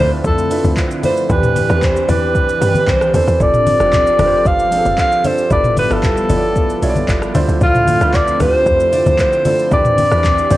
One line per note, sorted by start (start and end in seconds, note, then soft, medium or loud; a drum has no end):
0.00 0.21 D2 loud
0.00 0.50 D3 loud
0.00 1.27 D3 medium
0.00 1.26 F3 medium
0.00 1.27 A3 medium
0.00 1.28 C4 medium
0.00 0.51 D4 medium
0.00 0.51 E4 medium
0.00 0.51 F4 medium
0.00 0.51 B4 medium
0.00 0.11 C5 loud
0.00 1.32 C5 loud
0.24 0.59 F2 loud
0.24 0.74 A4 loud
0.24 kick loud
0.24 shaker medium
0.38 shaker medium
0.50 0.93 D3 medium
0.50 0.93 D4 medium
0.50 0.93 E4 medium
0.50 0.94 F4 medium
0.50 0.94 B4 medium
0.50 open hi-hat medium
0.50 shaker loud
0.64 0.76 D2 medium
0.64 high conga medium
0.64 shaker soft
0.77 kick medium
0.77 clap loud
0.77 shaker medium
0.91 shaker medium
1.03 1.24 D3 medium
1.03 1.25 D4 medium
1.03 1.25 E4 medium
1.03 1.25 F4 medium
1.03 1.25 B4 medium
1.03 1.33 C5 medium
1.03 open hi-hat medium
1.03 high conga medium
1.03 shaker medium
1.17 shaker medium
1.29 1.65 E2 loud
1.29 1.61 E3 medium
1.29 3.38 E3 medium
1.29 1.61 C4 medium
1.29 1.62 D4 medium
1.29 5.47 D4 medium
1.29 3.38 G4 medium
1.29 1.62 G4 medium
1.29 3.38 B4 medium
1.29 1.62 B4 medium
1.29 1.85 B4 loud
1.29 kick loud
1.29 low conga medium
1.29 shaker medium
1.43 mid tom loud
1.43 shaker medium
1.56 open hi-hat medium
1.56 high conga medium
1.56 shaker loud
1.69 2.04 E2 loud
1.69 2.01 E3 medium
1.69 2.01 C4 medium
1.69 2.01 D4 medium
1.69 2.01 G4 medium
1.69 2.01 B4 medium
1.69 cross-stick loud
1.69 shaker medium
1.82 2.11 C5 medium
1.82 kick medium
1.82 clap loud
1.82 low conga medium
1.82 shaker medium
1.96 shaker medium
2.08 2.55 E2 loud
2.08 2.51 E3 medium
2.08 2.51 C4 medium
2.08 2.51 D4 medium
2.08 2.51 G4 medium
2.08 2.91 B4 loud
2.08 2.51 D5 medium
2.08 open hi-hat medium
2.08 high conga medium
2.08 low conga medium
2.08 shaker medium
2.35 kick loud
2.35 shaker medium
2.49 shaker medium
2.61 2.84 G2 loud
2.61 2.68 D#3 medium
2.61 3.04 C4 medium
2.61 3.04 D4 medium
2.61 3.04 G4 medium
2.61 3.04 B4 medium
2.61 open hi-hat medium
2.61 shaker loud
2.67 3.07 E3 medium
2.75 high conga medium
2.75 shaker soft
2.87 3.11 C2 medium
2.87 3.15 C5 loud
2.87 kick loud
2.87 clap loud
2.87 shaker medium
3.01 cross-stick loud
3.01 shaker medium
3.13 3.26 E2 medium
3.13 3.35 E3 medium
3.13 3.35 C4 medium
3.13 3.35 D4 medium
3.13 3.35 G4 medium
3.13 3.36 A4 medium
3.13 3.43 C5 loud
3.13 open hi-hat medium
3.13 high conga medium
3.13 shaker medium
3.28 3.39 E2 loud
3.28 shaker medium
3.40 3.75 F1 loud
3.40 3.72 F3 medium
3.40 5.49 F3 medium
3.40 3.72 C4 medium
3.40 5.49 C4 medium
3.40 3.72 D4 medium
3.40 3.72 G4 medium
3.40 5.49 A4 medium
3.40 3.72 A4 medium
3.40 4.48 D5 loud
3.40 kick loud
3.40 low conga medium
3.40 shaker medium
3.54 mid tom loud
3.54 shaker medium
3.67 open hi-hat medium
3.67 high conga medium
3.67 shaker loud
3.80 4.14 F1 medium
3.80 4.11 F3 medium
3.80 4.12 C4 medium
3.80 4.12 D4 medium
3.80 4.12 G4 medium
3.80 4.12 A4 medium
3.80 cross-stick loud
3.80 shaker medium
3.93 kick medium
3.93 clap loud
3.93 low conga medium
3.93 shaker medium
4.07 shaker medium
4.19 4.42 F1 loud
4.19 4.62 F3 medium
4.19 4.62 C4 medium
4.19 4.62 D4 medium
4.19 4.62 G4 medium
4.19 4.26 B4 medium
4.19 cross-stick loud
4.19 open hi-hat soft
4.19 high conga medium
4.19 low conga medium
4.19 shaker medium
4.26 4.65 C5 loud
4.45 4.80 G1 loud
4.45 4.99 F5 loud
4.45 kick loud
4.45 shaker medium
4.59 shaker medium
4.71 5.14 F3 medium
4.71 5.14 C4 medium
4.71 5.14 D4 medium
4.71 5.15 G4 medium
4.71 4.79 G#4 medium
4.71 open hi-hat medium
4.71 shaker loud
4.79 5.18 A4 medium
4.85 4.97 F1 medium
4.85 high conga medium
4.85 shaker soft
4.98 5.28 F5 loud
4.98 kick medium
4.98 clap loud
4.98 shaker medium
5.12 shaker medium
5.24 5.46 F3 medium
5.24 5.46 C4 medium
5.24 5.46 D4 medium
5.24 5.46 G4 medium
5.24 5.46 A4 medium
5.24 5.52 C5 loud
5.24 open hi-hat medium
5.24 high conga medium
5.24 shaker loud
5.38 shaker medium
5.50 5.86 G1 loud
5.50 7.33 F3 medium
5.50 5.82 G3 medium
5.50 7.33 G3 medium
5.50 7.33 B3 medium
5.50 5.82 D4 medium
5.50 5.83 E4 medium
5.50 5.83 F4 medium
5.50 5.83 A4 medium
5.50 5.83 B4 medium
5.50 5.76 D5 loud
5.50 kick loud
5.50 low conga medium
5.50 shaker medium
5.64 mid tom loud
5.64 shaker medium
5.77 5.94 B4 medium
5.77 open hi-hat medium
5.77 high conga medium
5.77 shaker loud
5.90 6.25 G1 medium
5.90 6.22 G3 medium
5.90 6.22 D4 medium
5.90 6.22 E4 medium
5.90 6.22 F4 medium
5.90 6.22 A4 medium
5.90 6.97 A4 medium
5.90 6.23 B4 medium
5.90 cross-stick loud
5.90 shaker medium
6.03 kick medium
6.03 clap loud
6.03 low conga medium
6.03 shaker medium
6.17 shaker medium
6.29 6.76 G1 loud
6.29 6.72 G3 medium
6.29 6.72 D4 medium
6.29 6.72 E4 medium
6.29 6.72 F4 medium
6.29 6.73 A4 medium
6.29 6.37 C#5 medium
6.29 open hi-hat medium
6.29 high conga medium
6.29 low conga medium
6.29 shaker medium
6.37 6.76 D5 medium
6.56 kick loud
6.56 shaker medium
6.70 shaker medium
6.82 7.05 B1 medium
6.82 7.25 G3 medium
6.82 7.25 D4 medium
6.82 7.25 E4 medium
6.82 7.25 F4 medium
6.82 7.25 A4 medium
6.82 6.89 C#5 medium
6.82 open hi-hat medium
6.82 shaker loud
6.89 7.28 D5 loud
6.96 high conga medium
6.96 shaker soft
7.08 7.32 G1 medium
7.08 kick medium
7.08 clap loud
7.08 shaker medium
7.22 cross-stick loud
7.22 shaker medium
7.34 7.47 D2 loud
7.34 7.87 D3 loud
7.34 9.70 D3 medium
7.34 9.70 F3 loud
7.34 9.70 A3 medium
7.34 9.70 C4 medium
7.34 7.87 D4 medium
7.34 7.88 E4 medium
7.34 7.88 F4 medium
7.34 7.88 C5 loud
7.34 open hi-hat medium
7.34 high conga medium
7.34 shaker loud
7.49 7.60 D2 medium
7.49 shaker medium
7.61 7.96 D2 loud
7.61 8.17 F4 loud
7.61 kick loud
7.61 low conga medium
7.61 shaker medium
7.75 mid tom loud
7.75 shaker medium
7.87 open hi-hat medium
7.87 high conga medium
7.87 shaker loud
8.00 8.35 D2 loud
8.00 8.32 D3 medium
8.00 8.32 D4 medium
8.00 8.33 E4 medium
8.00 8.33 F4 medium
8.00 8.33 B4 medium
8.00 cross-stick loud
8.00 shaker medium
8.14 8.41 D5 loud
8.14 kick medium
8.14 clap loud
8.14 low conga medium
8.14 shaker medium
8.28 shaker medium
8.39 8.63 D2 loud
8.39 8.82 D3 medium
8.39 8.83 D4 medium
8.39 8.83 E4 medium
8.39 8.83 F4 medium
8.39 8.83 G4 medium
8.39 9.16 C5 loud
8.39 cross-stick loud
8.39 open hi-hat medium
8.39 high conga medium
8.39 low conga medium
8.39 shaker medium
8.66 9.01 F2 loud
8.66 kick loud
8.66 shaker medium
8.80 shaker medium
8.92 9.35 D3 medium
8.92 9.35 D4 medium
8.92 9.35 E4 medium
8.92 9.36 F4 medium
8.92 9.36 D5 medium
8.92 open hi-hat medium
8.92 shaker loud
9.06 9.18 D2 medium
9.06 high conga medium
9.06 shaker soft
9.19 9.69 C5 loud
9.19 kick medium
9.19 clap loud
9.19 shaker medium
9.33 shaker medium
9.45 9.66 D3 medium
9.45 9.67 D4 medium
9.45 9.67 E4 medium
9.45 9.67 F4 medium
9.45 9.67 A4 medium
9.45 open hi-hat medium
9.45 high conga medium
9.45 shaker loud
9.59 shaker medium
9.71 10.07 E2 loud
9.71 10.03 E3 medium
9.71 10.57 E3 medium
9.71 10.03 C4 medium
9.71 10.57 C4 medium
9.71 10.04 D4 medium
9.71 10.57 D4 medium
9.71 10.04 G4 medium
9.71 10.57 G4 medium
9.71 10.04 B4 medium
9.71 10.57 D5 loud
9.71 kick loud
9.71 low conga medium
9.71 shaker medium
9.85 mid tom loud
9.85 shaker medium
9.98 open hi-hat medium
9.98 high conga medium
9.98 shaker loud
10.11 10.46 E2 loud
10.11 10.43 E3 medium
10.11 10.43 C4 medium
10.11 10.43 D4 medium
10.11 10.43 G4 medium
10.11 10.44 B4 medium
10.11 cross-stick loud
10.11 shaker medium
10.24 kick medium
10.24 clap loud
10.24 low conga medium
10.24 shaker medium
10.38 shaker medium
10.50 10.57 E2 loud
10.50 10.57 E3 medium
10.50 10.57 C4 medium
10.50 10.57 D4 medium
10.50 10.57 G4 medium
10.50 10.57 C5 loud
10.50 open hi-hat soft
10.50 high conga medium
10.50 low conga medium
10.50 shaker medium